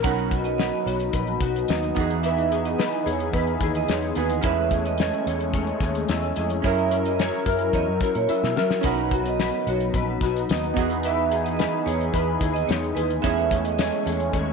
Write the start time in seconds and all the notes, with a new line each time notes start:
Already playing: C#4 E4 A#4
0.03 B1 B2 F#3 B3 C#4 D#4 A#4 B4 F#5, kick, closed hi-hat, tambourine
0.07 F#4
0.19 closed hi-hat
0.31 F#4, kick, closed hi-hat
0.44 D#5, closed hi-hat
0.58 B4 D#5, snare, tambourine
0.86 B1 F#4 C#5, closed hi-hat, tambourine
1.00 closed hi-hat
1.13 A#1 B4, kick, closed hi-hat
1.27 closed hi-hat
1.40 B1 F#4, kick, closed hi-hat, tambourine
1.56 closed hi-hat
1.68 D#2 D#4 D#5, snare, tambourine
1.83 closed hi-hat
1.95 E2 E3 B3 D#4 F#4 G#4, kick, closed hi-hat, tambourine
2.00 G#4
2.10 closed hi-hat
2.23 E3 B4 E5, closed hi-hat, tambourine
2.38 closed hi-hat
2.52 G#4, closed hi-hat
2.65 D#5, closed hi-hat
2.79 B4 D#5, snare, tambourine
2.92 closed hi-hat
3.06 E2 G#4 C#5, closed hi-hat, tambourine
3.20 closed hi-hat
3.33 E2 B4, kick, closed hi-hat, tambourine
3.47 closed hi-hat
3.61 D#2 G#4, kick, snare, closed hi-hat, tambourine
3.75 D#5, closed hi-hat
3.88 E2 D#4 C#5, snare, tambourine
4.03 closed hi-hat
4.15 D#2 B3 D#4 F#4 G#4 B4, closed hi-hat, tambourine
4.29 closed hi-hat
4.41 E2 E3 G#3 A3 C#4 E4 G#4 C#5 E5, kick, closed hi-hat, tambourine
4.46 B4
4.71 G#4, kick, closed hi-hat
4.85 D#5, closed hi-hat
4.98 C#5 D#5, snare, tambourine
5.13 closed hi-hat
5.27 E2 G#4 C#5, closed hi-hat, tambourine
5.40 closed hi-hat
5.54 C#5, kick, closed hi-hat
5.67 closed hi-hat
5.80 D#2 G#4, kick, snare, closed hi-hat, tambourine
5.95 closed hi-hat
6.08 E2 E4 D#5, snare, tambourine
6.23 closed hi-hat
6.36 F2 G#4, closed hi-hat, tambourine
6.50 closed hi-hat
6.62 F#2 F#3 C#4 E4 G#4 A#4 C#5 E5, kick, closed hi-hat, tambourine
6.67 A#4
6.78 closed hi-hat
6.91 A#4, closed hi-hat
7.05 D#5, closed hi-hat
7.19 C#5, snare, tambourine
7.32 closed hi-hat
7.46 F#2 A#4 E5, kick, closed hi-hat, tambourine
7.59 closed hi-hat
7.73 E2 C#5 D#5, kick, closed hi-hat, tambourine
7.88 F#2
8.01 A#4, kick, snare, closed hi-hat, tambourine
8.15 A#2 C#5, closed hi-hat
8.29 E4 E5, muted picked electric bass stroke, tambourine
8.44 B2, snare
8.56 F#3 A#4 E5, snare, tambourine
8.71 snare
8.81 B1 B2 F#3 B3 C#4 D#4 F#4 B4, kick, closed hi-hat
8.85 A#4 F#5, tambourine
8.97 closed hi-hat
9.11 F#4, kick, closed hi-hat, tambourine
9.26 D#5, closed hi-hat
9.40 B4 D#5, snare, tambourine
9.67 B1 F#4 C#5, closed hi-hat, tambourine
9.80 closed hi-hat
9.94 A#1 B4, kick, closed hi-hat
10.21 B1 F#4, kick, snare, closed hi-hat, tambourine
10.37 closed hi-hat
10.49 D#2 D#4 D#5, snare, tambourine
10.64 closed hi-hat
10.74 E2 E3 B3 D#4 F#4 G#4, kick, closed hi-hat, tambourine
10.78 E3 G#4
10.90 closed hi-hat
11.03 E3 B4 E5, closed hi-hat, tambourine
11.31 G#4, closed hi-hat, tambourine
11.44 D#5, closed hi-hat
11.57 B4 D#5, snare, tambourine
11.86 E2 G#4 C#5, closed hi-hat, tambourine
12.01 closed hi-hat
12.12 E2 B4, kick, closed hi-hat, tambourine
12.41 D#2 G#4, kick, closed hi-hat, tambourine
12.54 D#5, closed hi-hat
12.67 E2 D#4 C#5, snare, tambourine
12.84 closed hi-hat
12.95 D#2 G#4 B4, closed hi-hat, tambourine
13.10 closed hi-hat
13.22 E2 E3 G#3 A3 B3 C#4 E4 C#5 E5, kick, closed hi-hat, tambourine
13.27 G#4
13.38 closed hi-hat
13.51 G#4, kick, closed hi-hat, tambourine
13.65 D#5, closed hi-hat
13.78 C#5 D#5, snare, tambourine
13.92 closed hi-hat
14.06 E2 G#4 C#5, closed hi-hat, tambourine
14.20 closed hi-hat
14.33 D#2 C#5, kick, closed hi-hat, tambourine